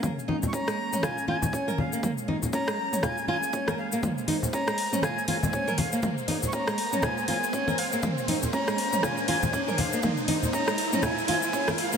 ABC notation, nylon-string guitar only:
X:1
M:4/4
L:1/16
Q:"Swing 16ths" 1/4=120
K:Bbm
V:1 name="Nylon-string guitar"
B, z E z D A, z D F z F z D B z B, | B, z E z D A, z D F z F z D B z B, | B, z E z D A, z D F z F z D B z B, | B, z E z D A, z D F z F z D B z B, |
B, z E z D A, z D F z F z D B z B, | B, z E z D A, z D F z F z D B z B, |]